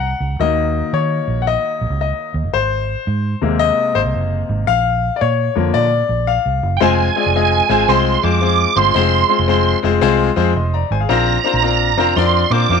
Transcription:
0.00 0.12 C2 medium
0.00 0.41 F#5 medium
0.20 0.35 C#2 medium
0.39 0.81 D#2 loud
0.39 2.50 D#3 medium
0.39 2.50 F#3 soft
0.39 2.50 A#3 medium
0.39 0.95 D#5 medium
0.93 1.20 D#3 medium
0.93 1.43 C#5 medium
1.28 1.55 A#1 medium
1.42 1.47 F#5 medium
1.47 1.99 D#5 medium
1.81 1.88 A#1 medium
1.90 2.11 C#2 medium
2.01 2.33 D#5 medium
2.34 2.42 D#2 medium
2.43 2.51 F#1 medium
2.53 2.94 G#1 loud
2.53 3.64 C5 medium
3.07 3.34 G#2 medium
3.42 3.70 D#2 medium
3.42 4.63 C3 medium
3.42 4.64 G#3 medium
3.42 4.64 A#3 medium
3.59 3.96 D#5 loud
3.95 4.03 G#1 medium
3.95 4.00 C5 medium
4.05 4.12 C2 medium
4.15 4.41 F#1 medium
4.49 4.64 G#1 loud
4.67 5.09 A#1 loud
4.67 5.17 F5 loud
5.16 5.21 D5 medium
5.21 5.48 A#2 loud
5.21 5.76 C#5 medium
5.55 5.71 F2 loud
5.55 5.87 D3 medium
5.55 5.87 F3 soft
5.55 5.87 A#3 medium
5.74 6.01 A#2 loud
5.74 6.29 D5 medium
6.09 6.37 A#1 medium
6.27 6.77 F5 medium
6.46 6.59 C2 medium
6.63 6.77 F#1 medium
6.77 7.08 G#3 loud
6.77 6.82 G5 medium
6.81 7.08 F1 loud
6.81 7.08 C4 medium
6.81 7.08 F4 medium
6.81 7.09 G#4 medium
6.81 7.08 C5 loud
6.81 7.92 G#5 medium
7.16 7.30 G#3 medium
7.16 7.30 C4 medium
7.16 7.31 F4 medium
7.16 7.31 G#4 medium
7.16 7.31 D5 medium
7.26 7.60 F1 loud
7.35 7.62 G#3 medium
7.35 7.62 C4 medium
7.35 7.62 F4 medium
7.35 7.62 G#4 medium
7.35 7.62 D#5 medium
7.69 7.84 G#1 loud
7.69 7.84 G#3 medium
7.69 7.84 C4 medium
7.69 7.84 F4 medium
7.69 7.84 G#4 medium
7.69 7.85 C5 loud
7.88 8.15 C2 loud
7.88 8.15 G#3 loud
7.88 8.15 C4 medium
7.88 8.15 F4 loud
7.88 8.16 G#4 medium
7.88 8.16 C5 loud
7.88 8.24 C6 loud
8.23 8.65 F2 medium
8.23 8.37 G#3 medium
8.23 8.37 C4 medium
8.23 8.38 F4 medium
8.23 8.38 G#4 medium
8.23 8.38 C5 medium
8.23 8.78 D6 loud
8.41 8.68 G#3 medium
8.41 8.68 C4 medium
8.41 8.68 F4 medium
8.41 8.69 G#4 medium
8.41 8.69 C5 medium
8.76 8.91 G1 loud
8.76 8.91 G#3 medium
8.76 8.91 C4 medium
8.76 8.91 F4 medium
8.76 8.91 G#4 medium
8.76 8.91 C5 medium
8.76 9.79 C6 loud
8.94 9.22 F1 loud
8.94 9.21 G#3 medium
8.94 9.22 C4 medium
8.94 9.22 F4 medium
8.94 9.22 G#4 medium
8.94 9.22 C5 loud
9.28 9.44 G#3 medium
9.28 9.44 C4 medium
9.28 9.44 F4 medium
9.28 9.45 G#4 medium
9.28 9.45 C5 medium
9.39 9.73 F1 loud
9.48 9.75 G#3 medium
9.48 9.75 C4 medium
9.48 9.75 F4 medium
9.48 9.76 G#4 medium
9.48 9.76 C5 loud
9.83 9.98 F1 loud
9.83 9.98 G#3 medium
9.83 9.98 C4 medium
9.83 9.98 F4 medium
9.83 9.98 G#4 medium
9.83 9.99 C5 loud
10.01 10.29 C2 loud
10.01 10.28 G#3 loud
10.01 10.29 C4 loud
10.01 10.29 F4 loud
10.01 10.29 G#4 loud
10.01 10.29 C5 loud
10.36 10.57 F2 loud
10.36 10.51 G#3 medium
10.36 10.51 C4 medium
10.36 10.51 F4 medium
10.36 10.51 G#4 medium
10.36 10.51 C5 loud
10.56 10.82 F1 loud
10.56 10.72 C6 medium
10.74 10.90 D5 medium
10.74 10.90 A#5 medium
10.91 11.05 G#1 loud
10.91 11.00 C5 medium
10.91 11.00 G#5 medium
11.00 11.26 G#4 medium
11.00 11.25 F5 medium
11.09 11.36 A#1 loud
11.09 11.36 C4 loud
11.09 11.36 D4 medium
11.09 11.36 F4 medium
11.09 11.36 A#4 medium
11.09 11.36 C5 loud
11.09 12.19 A#5 medium
11.44 11.58 C4 medium
11.44 11.59 D4 medium
11.44 11.59 F4 medium
11.44 11.59 A#4 medium
11.44 11.59 C5 medium
11.54 11.97 A#1 medium
11.62 11.89 C4 medium
11.62 11.89 D4 medium
11.62 11.90 F4 medium
11.62 11.90 A#4 medium
11.62 11.90 D5 medium
11.97 12.12 F1 loud
11.97 12.12 C4 medium
11.97 12.12 D4 medium
11.97 12.12 F4 medium
11.97 12.12 A#4 medium
11.97 12.13 C5 loud
12.16 12.43 F2 loud
12.16 12.43 C4 loud
12.16 12.43 D4 medium
12.16 12.43 F4 medium
12.16 12.43 A#4 loud
12.16 12.44 D5 loud
12.16 12.52 C6 loud
12.50 12.65 A#2 loud
12.50 12.65 C4 medium
12.50 12.65 D4 medium
12.50 12.66 F4 medium
12.50 12.66 A#4 medium
12.50 12.66 C5 medium
12.50 12.80 D6 loud
12.69 12.80 F2 medium
12.69 12.80 C4 medium
12.69 12.80 D4 medium
12.69 12.80 F4 medium
12.69 12.80 A#4 medium
12.69 12.80 C5 medium

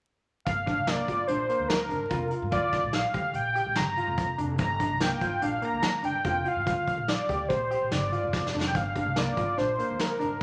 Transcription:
0.45 0.73 G1 medium
0.45 0.89 F5 medium
0.45 kick medium
0.45 closed hi-hat medium
0.66 0.79 D4 medium
0.66 kick medium
0.66 closed hi-hat soft
0.77 0.95 C2 medium
0.87 1.00 A#3 medium
0.87 1.29 D5 loud
0.87 snare medium
0.87 closed hi-hat medium
1.08 1.17 G1 medium
1.08 1.21 F4 medium
1.08 kick medium
1.08 closed hi-hat medium
1.27 1.47 A#1 medium
1.27 1.42 D4 medium
1.27 1.70 C5 loud
1.27 closed hi-hat medium
1.49 1.75 A#3 medium
1.49 closed hi-hat medium
1.59 1.91 D2 medium
1.69 2.31 A#4 loud
1.69 snare loud
1.69 closed hi-hat medium
1.89 1.99 G1 medium
1.89 2.02 D4 medium
1.89 closed hi-hat medium
2.10 2.29 F1 medium
2.10 2.23 F4 medium
2.10 kick medium
2.10 closed hi-hat medium
2.31 2.44 F4 medium
2.31 closed hi-hat medium
2.42 2.51 G2 medium
2.51 2.85 D2 medium
2.51 2.77 F4 medium
2.51 2.95 D5 loud
2.51 kick medium
2.51 closed hi-hat medium
2.73 kick medium
2.73 snare soft
2.73 closed hi-hat medium
2.83 3.01 A#1 medium
2.93 3.37 F5 loud
2.93 snare medium
2.93 closed hi-hat medium
3.13 3.32 D2 medium
3.13 3.40 G4 medium
3.13 kick medium
3.13 closed hi-hat medium
3.33 3.61 A#1 medium
3.33 3.78 G5 loud
3.33 closed hi-hat medium
3.55 3.82 G4 medium
3.55 closed hi-hat medium
3.66 3.77 A#1 medium
3.76 3.94 G1 medium
3.76 4.39 A#5 loud
3.76 snare loud
3.76 closed hi-hat medium
3.97 4.23 F4 medium
3.97 closed hi-hat soft
4.07 4.35 F1 medium
4.17 kick medium
4.17 closed hi-hat medium
4.38 4.59 F1 medium
4.38 4.51 D4 medium
4.38 closed hi-hat medium
4.58 4.86 G1 medium
4.58 5.03 A#5 loud
4.58 kick loud
4.58 closed hi-hat medium
4.79 4.93 D4 medium
4.79 kick medium
4.79 closed hi-hat medium
4.90 5.08 C2 medium
5.00 5.14 A#3 medium
5.00 5.45 G5 medium
5.00 snare medium
5.00 closed hi-hat medium
5.21 5.31 G1 medium
5.21 5.34 F4 medium
5.21 kick medium
5.21 closed hi-hat medium
5.42 5.60 A#1 medium
5.42 5.55 D4 medium
5.42 5.66 F5 loud
5.42 closed hi-hat medium
5.62 5.88 A#3 medium
5.62 6.04 A#5 loud
5.62 closed hi-hat medium
5.73 6.05 D2 medium
5.83 snare medium
5.83 closed hi-hat medium
6.03 6.13 G1 medium
6.03 6.16 D4 medium
6.03 6.49 G5 loud
6.03 closed hi-hat medium
6.24 6.43 F1 medium
6.24 6.38 F4 medium
6.24 kick medium
6.24 closed hi-hat medium
6.45 6.59 F4 medium
6.45 6.67 F5 loud
6.45 closed hi-hat soft
6.56 6.65 G2 medium
6.66 6.99 D2 medium
6.66 6.92 F4 medium
6.66 7.10 F5 loud
6.66 kick medium
6.66 closed hi-hat medium
6.88 kick medium
6.88 closed hi-hat soft
6.97 7.16 A#1 medium
7.08 7.50 D5 medium
7.08 snare medium
7.08 closed hi-hat medium
7.29 7.47 D2 medium
7.29 7.55 G4 medium
7.29 kick medium
7.29 closed hi-hat medium
7.49 7.77 A#1 medium
7.49 7.93 C5 medium
7.49 kick medium
7.49 closed hi-hat medium
7.71 7.97 G4 medium
7.71 closed hi-hat medium
7.81 7.93 A#1 medium
7.91 8.09 G1 medium
7.91 8.54 D5 medium
7.91 snare medium
7.91 closed hi-hat medium
8.12 8.38 F4 medium
8.12 closed hi-hat medium
8.23 8.50 F1 medium
8.33 kick medium
8.33 snare medium
8.47 snare medium
8.54 8.75 F1 medium
8.54 8.67 D4 medium
8.61 snare medium
8.68 8.78 G5 medium
8.75 9.02 G1 medium
8.75 9.20 F5 loud
8.75 kick medium
8.75 closed hi-hat medium
8.95 9.08 D4 medium
8.95 kick medium
8.95 closed hi-hat medium
9.06 9.24 C2 medium
9.16 9.29 A#3 medium
9.16 9.59 D5 medium
9.16 snare loud
9.16 closed hi-hat medium
9.37 9.46 G1 medium
9.37 9.51 F4 medium
9.37 kick medium
9.37 closed hi-hat medium
9.57 9.76 A#1 medium
9.57 9.71 D4 medium
9.57 10.02 C5 loud
9.57 snare soft
9.57 closed hi-hat medium
9.79 10.05 A#3 medium
9.79 closed hi-hat medium
9.90 10.22 D2 medium
9.99 10.43 A#4 medium
9.99 snare medium
9.99 closed hi-hat medium
10.19 10.29 G1 medium
10.19 10.32 D4 medium
10.19 closed hi-hat medium

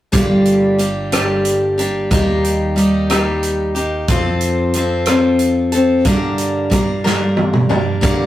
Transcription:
0.12 2.07 G1 medium
0.12 0.79 G2 medium
0.12 0.79 D3 medium
0.12 0.78 G3 medium
0.12 0.79 A#3 medium
0.12 0.79 D4 medium
0.12 0.80 G4 medium
0.12 kick loud
0.12 closed hi-hat medium
0.45 closed hi-hat medium
0.79 1.12 G3 medium
0.79 1.11 A#3 medium
0.79 1.11 D4 medium
0.79 1.11 G4 medium
0.79 closed hi-hat medium
1.12 1.79 G2 medium
1.12 1.78 D3 medium
1.12 1.79 G3 medium
1.12 1.78 A#3 medium
1.12 1.78 D4 medium
1.12 1.76 G4 medium
1.12 cross-stick medium
1.12 closed hi-hat medium
1.45 closed hi-hat medium
1.78 2.10 G3 soft
1.78 2.10 A#3 soft
1.78 2.11 D4 soft
1.78 2.11 G4 medium
1.78 closed hi-hat medium
2.11 4.05 D#2 medium
2.11 2.77 D#3 medium
2.11 2.75 G3 medium
2.11 2.75 A#3 medium
2.11 2.77 D#4 medium
2.11 2.77 G4 medium
2.11 kick loud
2.11 closed hi-hat medium
2.45 closed hi-hat medium
2.76 3.09 G3 medium
2.76 3.10 A#3 medium
2.76 3.09 D#4 medium
2.76 3.09 G4 medium
2.76 closed hi-hat medium
3.10 3.76 D#3 medium
3.10 3.76 G3 medium
3.10 3.76 A#3 medium
3.10 3.76 D#4 medium
3.10 3.74 G4 medium
3.10 cross-stick medium
3.10 closed hi-hat medium
3.43 closed hi-hat medium
3.75 4.09 A#3 soft
3.75 4.09 D#4 soft
3.75 4.08 G4 medium
3.75 closed hi-hat soft
4.08 6.02 F2 medium
4.08 4.73 F3 medium
4.08 4.75 C4 medium
4.08 4.75 F4 medium
4.08 4.75 A4 medium
4.08 kick medium
4.08 closed hi-hat medium
4.41 closed hi-hat medium
4.74 5.07 F3 medium
4.74 5.08 C4 medium
4.74 5.07 F4 medium
4.74 5.06 A4 medium
4.74 closed hi-hat medium
5.06 5.74 F3 medium
5.06 5.74 C4 medium
5.06 5.73 F4 medium
5.06 5.71 A4 medium
5.06 cross-stick medium
5.06 closed hi-hat medium
5.39 closed hi-hat soft
5.72 6.06 C4 soft
5.72 6.06 F4 soft
5.72 6.05 A4 medium
5.72 closed hi-hat soft
6.05 6.72 G2 medium
6.05 7.99 G2 medium
6.05 6.71 D3 medium
6.05 6.69 G3 medium
6.05 6.70 A#3 medium
6.05 6.71 D4 medium
6.05 6.72 A#4 medium
6.05 kick medium
6.05 closed hi-hat medium
6.38 closed hi-hat medium
6.70 7.04 G3 medium
6.70 7.04 A#3 medium
6.70 7.03 D4 medium
6.70 7.03 A#4 medium
6.70 kick medium
6.70 closed hi-hat medium
7.04 7.71 G2 medium
7.04 7.71 D3 medium
7.04 7.70 G3 medium
7.04 7.69 A#3 medium
7.04 7.68 D4 medium
7.04 7.68 A#4 medium
7.04 snare soft
7.37 high tom medium
7.53 mid tom medium
7.69 8.01 G3 soft
7.69 8.02 A#3 soft
7.69 8.02 D4 medium
7.69 8.02 A#4 medium
7.69 mid tom medium
8.01 8.26 G2 medium
8.01 8.26 D3 medium
8.01 8.26 G3 medium
8.01 8.26 A#3 medium
8.01 8.26 D4 medium
8.01 8.26 A#4 medium
8.01 kick loud
8.01 closed hi-hat medium

